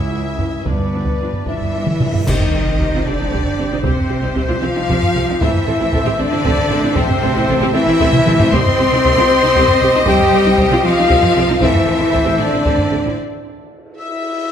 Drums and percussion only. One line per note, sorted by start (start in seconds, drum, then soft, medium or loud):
0.39 taiko low medium
0.66 taiko loud
0.79 taiko low soft
1.06 taiko medium
1.33 taiko low soft
1.46 taiko medium
1.60 taiko low soft
1.87 taiko mid medium
2.00 taiko low-mid medium
2.14 taiko low medium
2.27 concert bass drum medium
2.27 taiko loud
2.27 crash medium
2.41 taiko low medium
2.79 taiko medium
3.32 taiko medium
3.44 taiko low soft
3.83 taiko loud
3.97 taiko low medium
4.37 taiko medium
4.89 taiko medium
5.03 taiko low medium
5.41 taiko loud
5.54 taiko low medium
5.93 taiko medium
6.44 taiko loud
6.58 taiko low soft
6.96 taiko loud
7.09 taiko low medium
7.48 taiko medium
8.00 taiko medium
8.13 taiko low-mid loud
8.26 taiko mid loud
8.40 taiko low loud
8.53 taiko loud
8.66 taiko low medium
9.04 taiko medium
9.55 taiko medium
9.68 taiko low medium
10.07 taiko loud
10.19 taiko low medium
10.58 taiko medium
11.10 taiko medium
11.23 taiko low medium
11.61 taiko loud
11.74 taiko low medium
12.14 taiko medium
12.66 taiko medium
12.79 taiko low medium